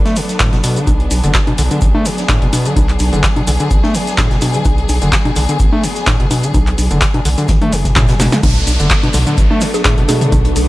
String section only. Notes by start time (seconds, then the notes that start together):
Already playing: F#3 B3 D4 A4
0.87 G#4
8.44 F#3 A3 B3 D4